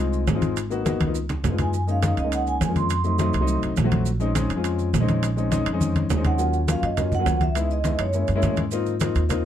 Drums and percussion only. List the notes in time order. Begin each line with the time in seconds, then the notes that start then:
0.13 high conga, maracas
0.27 high conga, high timbale, low timbale, maracas
0.42 high conga, high timbale, maracas
0.56 high conga, high timbale, maracas
0.71 high conga, maracas
0.86 high conga, high timbale, low timbale, maracas
1.00 high conga, high timbale, maracas
1.15 maracas
1.29 low conga, high timbale, maracas
1.44 low conga, high timbale, low timbale, maracas
1.59 low conga, high timbale, maracas
1.74 high conga, maracas
1.88 high conga, maracas
2.02 high conga, high timbale, low timbale, maracas
2.17 high conga, high timbale, maracas
2.32 high conga, high timbale, maracas
2.47 high conga, maracas
2.61 high conga, high timbale, low timbale, maracas
2.76 high conga, high timbale, maracas
2.90 high conga, high timbale, maracas
3.04 high conga, maracas
3.19 high conga, high timbale, low timbale, maracas
3.33 high conga, high timbale, maracas
3.48 high conga, maracas
3.63 high conga, high timbale, maracas
3.77 high conga, high timbale, low timbale, maracas
3.91 high conga, high timbale, maracas
4.06 high conga, maracas
4.20 high conga, maracas
4.35 high conga, high timbale, low timbale, maracas
4.50 high conga, high timbale, maracas
4.64 high conga, high timbale, maracas
4.79 high conga, maracas
4.94 high conga, high timbale, low timbale, maracas
5.08 high conga, high timbale, maracas
5.23 high conga, high timbale, maracas
5.37 high conga, maracas
5.52 high conga, high timbale, low timbale, maracas
5.66 high conga, high timbale, maracas
5.81 high conga, maracas
5.96 high conga, high timbale, maracas
6.10 low conga, high timbale, low timbale, maracas
6.24 low conga, high timbale, maracas
6.39 high conga, maracas
6.53 high conga, maracas
6.68 high conga, high timbale, low timbale, maracas
6.83 high conga, high timbale, maracas
6.97 high conga, low conga, high timbale, maracas
7.12 high conga, low conga, maracas
7.26 high conga, high timbale, low timbale, maracas
7.41 high conga, high timbale, maracas
7.55 high conga, high timbale, maracas
7.70 high conga, maracas
7.84 high conga, high timbale, low timbale, maracas
7.99 high conga, high timbale, maracas
8.13 high conga, maracas
8.27 high conga, high timbale, maracas
8.42 high conga, high timbale, low timbale, maracas
8.57 high conga, high timbale, maracas
8.71 high conga, maracas
8.86 high conga, maracas
9.00 high conga, high timbale, low timbale, maracas
9.15 high conga, high timbale, maracas
9.30 high conga, low conga, high timbale, maracas